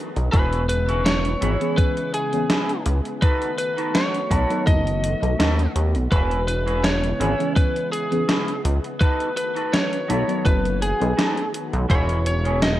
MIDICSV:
0, 0, Header, 1, 8, 480
1, 0, Start_track
1, 0, Key_signature, 4, "major"
1, 0, Tempo, 722892
1, 223, Time_signature, 4, 2, 24, 8
1, 8498, End_track
2, 0, Start_track
2, 0, Title_t, "Lead electric guitar"
2, 0, Program_c, 0, 29
2, 215, Note_on_c, 0, 71, 102
2, 449, Note_off_c, 0, 71, 0
2, 457, Note_on_c, 0, 71, 99
2, 683, Note_off_c, 0, 71, 0
2, 700, Note_on_c, 0, 73, 105
2, 1178, Note_on_c, 0, 71, 102
2, 1196, Note_off_c, 0, 73, 0
2, 1419, Note_off_c, 0, 71, 0
2, 1421, Note_on_c, 0, 68, 83
2, 1876, Note_off_c, 0, 68, 0
2, 2140, Note_on_c, 0, 71, 90
2, 2371, Note_off_c, 0, 71, 0
2, 2379, Note_on_c, 0, 71, 83
2, 2623, Note_on_c, 0, 73, 98
2, 2628, Note_off_c, 0, 71, 0
2, 3076, Note_off_c, 0, 73, 0
2, 3100, Note_on_c, 0, 75, 103
2, 3795, Note_off_c, 0, 75, 0
2, 4062, Note_on_c, 0, 71, 102
2, 4292, Note_off_c, 0, 71, 0
2, 4300, Note_on_c, 0, 71, 101
2, 4539, Note_on_c, 0, 73, 104
2, 4549, Note_off_c, 0, 71, 0
2, 4994, Note_off_c, 0, 73, 0
2, 5022, Note_on_c, 0, 71, 101
2, 5257, Note_off_c, 0, 71, 0
2, 5259, Note_on_c, 0, 68, 84
2, 5715, Note_off_c, 0, 68, 0
2, 5980, Note_on_c, 0, 71, 100
2, 6214, Note_off_c, 0, 71, 0
2, 6221, Note_on_c, 0, 71, 96
2, 6461, Note_on_c, 0, 73, 107
2, 6469, Note_off_c, 0, 71, 0
2, 6944, Note_on_c, 0, 71, 99
2, 6957, Note_off_c, 0, 73, 0
2, 7182, Note_off_c, 0, 71, 0
2, 7184, Note_on_c, 0, 68, 84
2, 7637, Note_off_c, 0, 68, 0
2, 7907, Note_on_c, 0, 73, 103
2, 8138, Note_off_c, 0, 73, 0
2, 8146, Note_on_c, 0, 73, 102
2, 8368, Note_off_c, 0, 73, 0
2, 8381, Note_on_c, 0, 75, 104
2, 8498, Note_off_c, 0, 75, 0
2, 8498, End_track
3, 0, Start_track
3, 0, Title_t, "Clean electric guitar"
3, 0, Program_c, 1, 27
3, 219, Note_on_c, 1, 61, 119
3, 223, Note_on_c, 1, 64, 110
3, 227, Note_on_c, 1, 68, 111
3, 230, Note_on_c, 1, 71, 127
3, 404, Note_off_c, 1, 61, 0
3, 407, Note_off_c, 1, 64, 0
3, 409, Note_off_c, 1, 68, 0
3, 410, Note_off_c, 1, 71, 0
3, 586, Note_on_c, 1, 61, 92
3, 591, Note_on_c, 1, 64, 87
3, 595, Note_on_c, 1, 68, 85
3, 599, Note_on_c, 1, 73, 105
3, 701, Note_off_c, 1, 61, 0
3, 703, Note_off_c, 1, 64, 0
3, 705, Note_off_c, 1, 68, 0
3, 707, Note_off_c, 1, 73, 0
3, 937, Note_on_c, 1, 61, 97
3, 940, Note_on_c, 1, 64, 88
3, 944, Note_on_c, 1, 68, 83
3, 949, Note_on_c, 1, 71, 105
3, 1307, Note_off_c, 1, 61, 0
3, 1309, Note_off_c, 1, 64, 0
3, 1311, Note_off_c, 1, 68, 0
3, 1313, Note_off_c, 1, 71, 0
3, 1657, Note_on_c, 1, 61, 93
3, 1662, Note_on_c, 1, 64, 86
3, 1665, Note_on_c, 1, 68, 86
3, 1670, Note_on_c, 1, 71, 108
3, 1787, Note_off_c, 1, 61, 0
3, 1789, Note_off_c, 1, 64, 0
3, 1791, Note_off_c, 1, 68, 0
3, 1793, Note_off_c, 1, 71, 0
3, 2137, Note_on_c, 1, 63, 121
3, 2141, Note_on_c, 1, 66, 109
3, 2144, Note_on_c, 1, 69, 109
3, 2148, Note_on_c, 1, 71, 127
3, 2323, Note_off_c, 1, 63, 0
3, 2326, Note_off_c, 1, 66, 0
3, 2327, Note_off_c, 1, 69, 0
3, 2329, Note_off_c, 1, 71, 0
3, 2504, Note_on_c, 1, 63, 91
3, 2507, Note_on_c, 1, 66, 83
3, 2511, Note_on_c, 1, 69, 85
3, 2515, Note_on_c, 1, 71, 101
3, 2620, Note_off_c, 1, 63, 0
3, 2621, Note_off_c, 1, 66, 0
3, 2624, Note_off_c, 1, 69, 0
3, 2626, Note_off_c, 1, 71, 0
3, 2857, Note_on_c, 1, 63, 92
3, 2860, Note_on_c, 1, 66, 84
3, 2865, Note_on_c, 1, 69, 86
3, 2869, Note_on_c, 1, 71, 103
3, 3227, Note_off_c, 1, 63, 0
3, 3229, Note_off_c, 1, 66, 0
3, 3231, Note_off_c, 1, 69, 0
3, 3233, Note_off_c, 1, 71, 0
3, 3578, Note_on_c, 1, 63, 92
3, 3582, Note_on_c, 1, 66, 85
3, 3587, Note_on_c, 1, 69, 78
3, 3590, Note_on_c, 1, 71, 102
3, 3708, Note_off_c, 1, 63, 0
3, 3710, Note_off_c, 1, 66, 0
3, 3711, Note_off_c, 1, 69, 0
3, 3713, Note_off_c, 1, 71, 0
3, 4058, Note_on_c, 1, 61, 118
3, 4063, Note_on_c, 1, 64, 110
3, 4067, Note_on_c, 1, 68, 111
3, 4071, Note_on_c, 1, 71, 127
3, 4244, Note_off_c, 1, 61, 0
3, 4246, Note_off_c, 1, 64, 0
3, 4248, Note_off_c, 1, 68, 0
3, 4250, Note_off_c, 1, 71, 0
3, 4424, Note_on_c, 1, 61, 93
3, 4428, Note_on_c, 1, 64, 86
3, 4432, Note_on_c, 1, 68, 81
3, 4437, Note_on_c, 1, 71, 97
3, 4540, Note_off_c, 1, 61, 0
3, 4542, Note_off_c, 1, 64, 0
3, 4544, Note_off_c, 1, 68, 0
3, 4545, Note_off_c, 1, 71, 0
3, 4780, Note_on_c, 1, 61, 91
3, 4783, Note_on_c, 1, 64, 84
3, 4788, Note_on_c, 1, 68, 81
3, 4792, Note_on_c, 1, 71, 88
3, 5149, Note_off_c, 1, 61, 0
3, 5150, Note_off_c, 1, 64, 0
3, 5153, Note_off_c, 1, 68, 0
3, 5154, Note_off_c, 1, 71, 0
3, 5498, Note_on_c, 1, 61, 96
3, 5502, Note_on_c, 1, 64, 89
3, 5506, Note_on_c, 1, 68, 84
3, 5509, Note_on_c, 1, 71, 107
3, 5628, Note_off_c, 1, 61, 0
3, 5630, Note_off_c, 1, 64, 0
3, 5631, Note_off_c, 1, 68, 0
3, 5633, Note_off_c, 1, 71, 0
3, 5978, Note_on_c, 1, 63, 122
3, 5981, Note_on_c, 1, 66, 110
3, 5985, Note_on_c, 1, 69, 109
3, 5989, Note_on_c, 1, 71, 127
3, 6164, Note_off_c, 1, 63, 0
3, 6166, Note_off_c, 1, 66, 0
3, 6168, Note_off_c, 1, 69, 0
3, 6170, Note_off_c, 1, 71, 0
3, 6344, Note_on_c, 1, 63, 90
3, 6347, Note_on_c, 1, 66, 85
3, 6352, Note_on_c, 1, 69, 87
3, 6356, Note_on_c, 1, 71, 103
3, 6460, Note_off_c, 1, 63, 0
3, 6461, Note_off_c, 1, 66, 0
3, 6464, Note_off_c, 1, 69, 0
3, 6466, Note_off_c, 1, 71, 0
3, 6694, Note_on_c, 1, 63, 90
3, 6697, Note_on_c, 1, 66, 86
3, 6702, Note_on_c, 1, 69, 86
3, 6707, Note_on_c, 1, 71, 100
3, 7066, Note_off_c, 1, 63, 0
3, 7067, Note_off_c, 1, 66, 0
3, 7070, Note_off_c, 1, 69, 0
3, 7072, Note_off_c, 1, 71, 0
3, 7416, Note_on_c, 1, 63, 97
3, 7419, Note_on_c, 1, 66, 87
3, 7423, Note_on_c, 1, 69, 88
3, 7427, Note_on_c, 1, 71, 104
3, 7546, Note_off_c, 1, 63, 0
3, 7548, Note_off_c, 1, 66, 0
3, 7550, Note_off_c, 1, 69, 0
3, 7552, Note_off_c, 1, 71, 0
3, 7892, Note_on_c, 1, 61, 122
3, 7897, Note_on_c, 1, 64, 112
3, 7902, Note_on_c, 1, 68, 113
3, 7906, Note_on_c, 1, 71, 127
3, 8081, Note_off_c, 1, 61, 0
3, 8083, Note_off_c, 1, 64, 0
3, 8086, Note_off_c, 1, 68, 0
3, 8088, Note_off_c, 1, 71, 0
3, 8264, Note_on_c, 1, 61, 92
3, 8267, Note_on_c, 1, 64, 86
3, 8272, Note_on_c, 1, 68, 85
3, 8275, Note_on_c, 1, 73, 102
3, 8380, Note_off_c, 1, 61, 0
3, 8381, Note_off_c, 1, 64, 0
3, 8384, Note_off_c, 1, 68, 0
3, 8385, Note_off_c, 1, 73, 0
3, 8498, End_track
4, 0, Start_track
4, 0, Title_t, "FM electric piano"
4, 0, Program_c, 2, 5
4, 938, Note_on_c, 2, 52, 78
4, 942, Note_on_c, 2, 59, 72
4, 945, Note_on_c, 2, 61, 72
4, 947, Note_on_c, 2, 68, 86
4, 1021, Note_off_c, 2, 52, 0
4, 1023, Note_off_c, 2, 59, 0
4, 1024, Note_off_c, 2, 61, 0
4, 1025, Note_off_c, 2, 68, 0
4, 1064, Note_on_c, 2, 52, 80
4, 1066, Note_on_c, 2, 59, 71
4, 1071, Note_on_c, 2, 61, 75
4, 1074, Note_on_c, 2, 68, 90
4, 1516, Note_off_c, 2, 52, 0
4, 1518, Note_off_c, 2, 59, 0
4, 1520, Note_off_c, 2, 61, 0
4, 1521, Note_off_c, 2, 68, 0
4, 1544, Note_on_c, 2, 52, 87
4, 1548, Note_on_c, 2, 59, 79
4, 1551, Note_on_c, 2, 61, 80
4, 1554, Note_on_c, 2, 68, 95
4, 1618, Note_off_c, 2, 52, 0
4, 1620, Note_off_c, 2, 59, 0
4, 1622, Note_off_c, 2, 61, 0
4, 1623, Note_off_c, 2, 68, 0
4, 2854, Note_on_c, 2, 54, 79
4, 2857, Note_on_c, 2, 59, 74
4, 2862, Note_on_c, 2, 63, 73
4, 2863, Note_on_c, 2, 69, 87
4, 2939, Note_off_c, 2, 54, 0
4, 2941, Note_off_c, 2, 59, 0
4, 2943, Note_off_c, 2, 63, 0
4, 2943, Note_off_c, 2, 69, 0
4, 2984, Note_on_c, 2, 54, 80
4, 2987, Note_on_c, 2, 59, 73
4, 2992, Note_on_c, 2, 63, 73
4, 2995, Note_on_c, 2, 69, 87
4, 3437, Note_off_c, 2, 54, 0
4, 3438, Note_off_c, 2, 59, 0
4, 3440, Note_off_c, 2, 63, 0
4, 3442, Note_off_c, 2, 69, 0
4, 3466, Note_on_c, 2, 54, 85
4, 3468, Note_on_c, 2, 59, 80
4, 3472, Note_on_c, 2, 63, 80
4, 3476, Note_on_c, 2, 69, 93
4, 3539, Note_off_c, 2, 54, 0
4, 3540, Note_off_c, 2, 59, 0
4, 3542, Note_off_c, 2, 63, 0
4, 3545, Note_off_c, 2, 69, 0
4, 4777, Note_on_c, 2, 52, 80
4, 4782, Note_on_c, 2, 59, 71
4, 4785, Note_on_c, 2, 61, 73
4, 4787, Note_on_c, 2, 68, 87
4, 4861, Note_off_c, 2, 52, 0
4, 4863, Note_off_c, 2, 59, 0
4, 4864, Note_off_c, 2, 61, 0
4, 4865, Note_off_c, 2, 68, 0
4, 4906, Note_on_c, 2, 52, 80
4, 4907, Note_on_c, 2, 59, 72
4, 4912, Note_on_c, 2, 61, 73
4, 4914, Note_on_c, 2, 68, 84
4, 5357, Note_off_c, 2, 52, 0
4, 5358, Note_off_c, 2, 59, 0
4, 5361, Note_off_c, 2, 61, 0
4, 5362, Note_off_c, 2, 68, 0
4, 5386, Note_on_c, 2, 52, 86
4, 5389, Note_on_c, 2, 59, 79
4, 5392, Note_on_c, 2, 61, 76
4, 5396, Note_on_c, 2, 68, 95
4, 5459, Note_off_c, 2, 52, 0
4, 5461, Note_off_c, 2, 59, 0
4, 5462, Note_off_c, 2, 61, 0
4, 5464, Note_off_c, 2, 68, 0
4, 6697, Note_on_c, 2, 54, 78
4, 6701, Note_on_c, 2, 59, 70
4, 6703, Note_on_c, 2, 63, 75
4, 6707, Note_on_c, 2, 69, 88
4, 6781, Note_off_c, 2, 54, 0
4, 6782, Note_off_c, 2, 59, 0
4, 6784, Note_off_c, 2, 63, 0
4, 6785, Note_off_c, 2, 69, 0
4, 6823, Note_on_c, 2, 54, 81
4, 6827, Note_on_c, 2, 59, 73
4, 6830, Note_on_c, 2, 63, 72
4, 6832, Note_on_c, 2, 69, 88
4, 7276, Note_off_c, 2, 54, 0
4, 7278, Note_off_c, 2, 59, 0
4, 7280, Note_off_c, 2, 63, 0
4, 7280, Note_off_c, 2, 69, 0
4, 7303, Note_on_c, 2, 54, 85
4, 7306, Note_on_c, 2, 59, 78
4, 7310, Note_on_c, 2, 63, 78
4, 7313, Note_on_c, 2, 69, 93
4, 7378, Note_off_c, 2, 54, 0
4, 7380, Note_off_c, 2, 59, 0
4, 7381, Note_off_c, 2, 63, 0
4, 7383, Note_off_c, 2, 69, 0
4, 8498, End_track
5, 0, Start_track
5, 0, Title_t, "String machine"
5, 0, Program_c, 3, 50
5, 0, Note_on_c, 3, 51, 79
5, 0, Note_on_c, 3, 57, 73
5, 0, Note_on_c, 3, 59, 74
5, 0, Note_on_c, 3, 66, 89
5, 203, Note_off_c, 3, 51, 0
5, 204, Note_off_c, 3, 57, 0
5, 204, Note_off_c, 3, 66, 0
5, 223, Note_on_c, 3, 49, 78
5, 224, Note_on_c, 3, 64, 86
5, 225, Note_on_c, 3, 56, 75
5, 2124, Note_off_c, 3, 49, 0
5, 2124, Note_off_c, 3, 64, 0
5, 2125, Note_off_c, 3, 56, 0
5, 2143, Note_on_c, 3, 51, 82
5, 2145, Note_on_c, 3, 57, 75
5, 2145, Note_on_c, 3, 66, 89
5, 4037, Note_off_c, 3, 59, 0
5, 4043, Note_off_c, 3, 51, 0
5, 4045, Note_off_c, 3, 57, 0
5, 4045, Note_off_c, 3, 66, 0
5, 4065, Note_on_c, 3, 49, 80
5, 4065, Note_on_c, 3, 56, 73
5, 4065, Note_on_c, 3, 59, 73
5, 4068, Note_on_c, 3, 64, 87
5, 5965, Note_off_c, 3, 49, 0
5, 5965, Note_off_c, 3, 56, 0
5, 5966, Note_off_c, 3, 64, 0
5, 5985, Note_on_c, 3, 66, 91
5, 5987, Note_on_c, 3, 51, 81
5, 5987, Note_on_c, 3, 57, 72
5, 7878, Note_off_c, 3, 59, 0
5, 7885, Note_off_c, 3, 66, 0
5, 7886, Note_off_c, 3, 51, 0
5, 7886, Note_off_c, 3, 57, 0
5, 7903, Note_on_c, 3, 56, 72
5, 7903, Note_on_c, 3, 59, 73
5, 7903, Note_on_c, 3, 64, 89
5, 7904, Note_on_c, 3, 49, 82
5, 8498, Note_off_c, 3, 49, 0
5, 8498, Note_off_c, 3, 56, 0
5, 8498, Note_off_c, 3, 59, 0
5, 8498, Note_off_c, 3, 64, 0
5, 8498, End_track
6, 0, Start_track
6, 0, Title_t, "Analog synth bass"
6, 0, Program_c, 4, 38
6, 111, Note_on_c, 4, 35, 101
6, 195, Note_off_c, 4, 35, 0
6, 222, Note_on_c, 4, 28, 100
6, 898, Note_off_c, 4, 28, 0
6, 944, Note_on_c, 4, 32, 103
6, 1039, Note_off_c, 4, 32, 0
6, 1900, Note_on_c, 4, 37, 107
6, 1997, Note_off_c, 4, 37, 0
6, 2861, Note_on_c, 4, 35, 101
6, 2957, Note_off_c, 4, 35, 0
6, 3101, Note_on_c, 4, 30, 81
6, 3418, Note_off_c, 4, 30, 0
6, 3470, Note_on_c, 4, 35, 88
6, 3555, Note_off_c, 4, 35, 0
6, 3582, Note_on_c, 4, 39, 86
6, 3766, Note_off_c, 4, 39, 0
6, 3823, Note_on_c, 4, 39, 97
6, 3950, Note_on_c, 4, 35, 84
6, 3960, Note_off_c, 4, 39, 0
6, 4035, Note_off_c, 4, 35, 0
6, 4061, Note_on_c, 4, 28, 99
6, 4737, Note_off_c, 4, 28, 0
6, 4782, Note_on_c, 4, 32, 102
6, 4878, Note_off_c, 4, 32, 0
6, 5744, Note_on_c, 4, 37, 102
6, 5839, Note_off_c, 4, 37, 0
6, 6704, Note_on_c, 4, 35, 101
6, 6799, Note_off_c, 4, 35, 0
6, 6942, Note_on_c, 4, 30, 80
6, 7259, Note_off_c, 4, 30, 0
6, 7312, Note_on_c, 4, 35, 92
6, 7396, Note_off_c, 4, 35, 0
6, 7791, Note_on_c, 4, 35, 101
6, 7875, Note_off_c, 4, 35, 0
6, 7901, Note_on_c, 4, 28, 101
6, 8498, Note_off_c, 4, 28, 0
6, 8498, End_track
7, 0, Start_track
7, 0, Title_t, "Muted clean electric guitar strokes"
7, 104, Note_on_c, 9, 29, 35
7, 171, Note_off_c, 9, 29, 0
7, 828, Note_on_c, 9, 29, 35
7, 894, Note_off_c, 9, 29, 0
7, 1897, Note_on_c, 9, 29, 35
7, 1964, Note_off_c, 9, 29, 0
7, 2025, Note_on_c, 9, 29, 35
7, 2092, Note_off_c, 9, 29, 0
7, 2744, Note_on_c, 9, 29, 36
7, 2811, Note_off_c, 9, 29, 0
7, 3817, Note_on_c, 9, 29, 36
7, 3884, Note_off_c, 9, 29, 0
7, 3945, Note_on_c, 9, 29, 34
7, 4012, Note_off_c, 9, 29, 0
7, 4667, Note_on_c, 9, 29, 35
7, 4734, Note_off_c, 9, 29, 0
7, 5738, Note_on_c, 9, 29, 36
7, 5805, Note_off_c, 9, 29, 0
7, 5863, Note_on_c, 9, 29, 36
7, 5929, Note_off_c, 9, 29, 0
7, 6584, Note_on_c, 9, 29, 36
7, 6650, Note_off_c, 9, 29, 0
7, 7654, Note_on_c, 9, 29, 35
7, 7720, Note_off_c, 9, 29, 0
7, 7782, Note_on_c, 9, 29, 35
7, 7848, Note_off_c, 9, 29, 0
7, 8498, End_track
8, 0, Start_track
8, 0, Title_t, "Drums"
8, 109, Note_on_c, 9, 42, 42
8, 175, Note_off_c, 9, 42, 0
8, 222, Note_on_c, 9, 42, 67
8, 223, Note_on_c, 9, 36, 127
8, 289, Note_off_c, 9, 36, 0
8, 289, Note_off_c, 9, 42, 0
8, 349, Note_on_c, 9, 42, 41
8, 416, Note_off_c, 9, 42, 0
8, 461, Note_on_c, 9, 42, 98
8, 527, Note_off_c, 9, 42, 0
8, 589, Note_on_c, 9, 42, 42
8, 655, Note_off_c, 9, 42, 0
8, 703, Note_on_c, 9, 38, 125
8, 703, Note_on_c, 9, 42, 69
8, 770, Note_off_c, 9, 38, 0
8, 770, Note_off_c, 9, 42, 0
8, 829, Note_on_c, 9, 42, 41
8, 896, Note_off_c, 9, 42, 0
8, 943, Note_on_c, 9, 42, 97
8, 1009, Note_off_c, 9, 42, 0
8, 1070, Note_on_c, 9, 42, 43
8, 1136, Note_off_c, 9, 42, 0
8, 1182, Note_on_c, 9, 36, 127
8, 1182, Note_on_c, 9, 42, 69
8, 1248, Note_off_c, 9, 36, 0
8, 1249, Note_off_c, 9, 42, 0
8, 1308, Note_on_c, 9, 42, 40
8, 1375, Note_off_c, 9, 42, 0
8, 1420, Note_on_c, 9, 42, 99
8, 1486, Note_off_c, 9, 42, 0
8, 1546, Note_on_c, 9, 42, 41
8, 1612, Note_off_c, 9, 42, 0
8, 1658, Note_on_c, 9, 38, 125
8, 1658, Note_on_c, 9, 42, 69
8, 1725, Note_off_c, 9, 38, 0
8, 1725, Note_off_c, 9, 42, 0
8, 1789, Note_on_c, 9, 42, 42
8, 1855, Note_off_c, 9, 42, 0
8, 1897, Note_on_c, 9, 42, 96
8, 1963, Note_off_c, 9, 42, 0
8, 2027, Note_on_c, 9, 42, 41
8, 2094, Note_off_c, 9, 42, 0
8, 2140, Note_on_c, 9, 42, 63
8, 2141, Note_on_c, 9, 36, 126
8, 2207, Note_off_c, 9, 36, 0
8, 2207, Note_off_c, 9, 42, 0
8, 2269, Note_on_c, 9, 42, 40
8, 2335, Note_off_c, 9, 42, 0
8, 2380, Note_on_c, 9, 42, 95
8, 2446, Note_off_c, 9, 42, 0
8, 2511, Note_on_c, 9, 42, 40
8, 2577, Note_off_c, 9, 42, 0
8, 2621, Note_on_c, 9, 38, 124
8, 2621, Note_on_c, 9, 42, 66
8, 2688, Note_off_c, 9, 38, 0
8, 2688, Note_off_c, 9, 42, 0
8, 2752, Note_on_c, 9, 42, 38
8, 2818, Note_off_c, 9, 42, 0
8, 2861, Note_on_c, 9, 36, 65
8, 2864, Note_on_c, 9, 42, 91
8, 2927, Note_off_c, 9, 36, 0
8, 2930, Note_off_c, 9, 42, 0
8, 2991, Note_on_c, 9, 42, 41
8, 3057, Note_off_c, 9, 42, 0
8, 3101, Note_on_c, 9, 36, 127
8, 3104, Note_on_c, 9, 42, 65
8, 3167, Note_off_c, 9, 36, 0
8, 3170, Note_off_c, 9, 42, 0
8, 3234, Note_on_c, 9, 42, 40
8, 3300, Note_off_c, 9, 42, 0
8, 3345, Note_on_c, 9, 42, 96
8, 3411, Note_off_c, 9, 42, 0
8, 3473, Note_on_c, 9, 42, 41
8, 3540, Note_off_c, 9, 42, 0
8, 3585, Note_on_c, 9, 38, 127
8, 3585, Note_on_c, 9, 42, 66
8, 3651, Note_off_c, 9, 38, 0
8, 3651, Note_off_c, 9, 42, 0
8, 3713, Note_on_c, 9, 42, 40
8, 3779, Note_off_c, 9, 42, 0
8, 3823, Note_on_c, 9, 42, 92
8, 3889, Note_off_c, 9, 42, 0
8, 3949, Note_on_c, 9, 42, 40
8, 4016, Note_off_c, 9, 42, 0
8, 4061, Note_on_c, 9, 36, 122
8, 4063, Note_on_c, 9, 42, 62
8, 4128, Note_off_c, 9, 36, 0
8, 4129, Note_off_c, 9, 42, 0
8, 4191, Note_on_c, 9, 42, 39
8, 4258, Note_off_c, 9, 42, 0
8, 4304, Note_on_c, 9, 42, 92
8, 4370, Note_off_c, 9, 42, 0
8, 4433, Note_on_c, 9, 42, 38
8, 4499, Note_off_c, 9, 42, 0
8, 4543, Note_on_c, 9, 38, 121
8, 4543, Note_on_c, 9, 42, 64
8, 4609, Note_off_c, 9, 38, 0
8, 4609, Note_off_c, 9, 42, 0
8, 4672, Note_on_c, 9, 42, 39
8, 4738, Note_off_c, 9, 42, 0
8, 4786, Note_on_c, 9, 42, 89
8, 4852, Note_off_c, 9, 42, 0
8, 4915, Note_on_c, 9, 42, 41
8, 4981, Note_off_c, 9, 42, 0
8, 5022, Note_on_c, 9, 36, 124
8, 5026, Note_on_c, 9, 42, 65
8, 5088, Note_off_c, 9, 36, 0
8, 5093, Note_off_c, 9, 42, 0
8, 5154, Note_on_c, 9, 42, 38
8, 5220, Note_off_c, 9, 42, 0
8, 5267, Note_on_c, 9, 42, 92
8, 5334, Note_off_c, 9, 42, 0
8, 5392, Note_on_c, 9, 42, 39
8, 5458, Note_off_c, 9, 42, 0
8, 5504, Note_on_c, 9, 38, 123
8, 5504, Note_on_c, 9, 42, 65
8, 5570, Note_off_c, 9, 38, 0
8, 5570, Note_off_c, 9, 42, 0
8, 5632, Note_on_c, 9, 42, 39
8, 5699, Note_off_c, 9, 42, 0
8, 5744, Note_on_c, 9, 42, 92
8, 5810, Note_off_c, 9, 42, 0
8, 5872, Note_on_c, 9, 42, 38
8, 5938, Note_off_c, 9, 42, 0
8, 5982, Note_on_c, 9, 36, 121
8, 5985, Note_on_c, 9, 42, 62
8, 6048, Note_off_c, 9, 36, 0
8, 6051, Note_off_c, 9, 42, 0
8, 6111, Note_on_c, 9, 42, 37
8, 6178, Note_off_c, 9, 42, 0
8, 6222, Note_on_c, 9, 42, 94
8, 6289, Note_off_c, 9, 42, 0
8, 6351, Note_on_c, 9, 42, 39
8, 6417, Note_off_c, 9, 42, 0
8, 6465, Note_on_c, 9, 38, 117
8, 6465, Note_on_c, 9, 42, 63
8, 6531, Note_off_c, 9, 38, 0
8, 6531, Note_off_c, 9, 42, 0
8, 6592, Note_on_c, 9, 42, 37
8, 6659, Note_off_c, 9, 42, 0
8, 6705, Note_on_c, 9, 42, 92
8, 6772, Note_off_c, 9, 42, 0
8, 6833, Note_on_c, 9, 42, 39
8, 6899, Note_off_c, 9, 42, 0
8, 6942, Note_on_c, 9, 36, 116
8, 6946, Note_on_c, 9, 42, 64
8, 7008, Note_off_c, 9, 36, 0
8, 7012, Note_off_c, 9, 42, 0
8, 7074, Note_on_c, 9, 42, 39
8, 7140, Note_off_c, 9, 42, 0
8, 7186, Note_on_c, 9, 42, 92
8, 7252, Note_off_c, 9, 42, 0
8, 7314, Note_on_c, 9, 42, 38
8, 7380, Note_off_c, 9, 42, 0
8, 7427, Note_on_c, 9, 38, 119
8, 7427, Note_on_c, 9, 42, 67
8, 7494, Note_off_c, 9, 38, 0
8, 7494, Note_off_c, 9, 42, 0
8, 7552, Note_on_c, 9, 42, 39
8, 7619, Note_off_c, 9, 42, 0
8, 7664, Note_on_c, 9, 42, 89
8, 7730, Note_off_c, 9, 42, 0
8, 7791, Note_on_c, 9, 42, 38
8, 7857, Note_off_c, 9, 42, 0
8, 7900, Note_on_c, 9, 36, 113
8, 7902, Note_on_c, 9, 42, 64
8, 7967, Note_off_c, 9, 36, 0
8, 7968, Note_off_c, 9, 42, 0
8, 8028, Note_on_c, 9, 42, 39
8, 8095, Note_off_c, 9, 42, 0
8, 8141, Note_on_c, 9, 42, 94
8, 8208, Note_off_c, 9, 42, 0
8, 8269, Note_on_c, 9, 42, 39
8, 8335, Note_off_c, 9, 42, 0
8, 8381, Note_on_c, 9, 38, 114
8, 8381, Note_on_c, 9, 42, 64
8, 8448, Note_off_c, 9, 38, 0
8, 8448, Note_off_c, 9, 42, 0
8, 8498, End_track
0, 0, End_of_file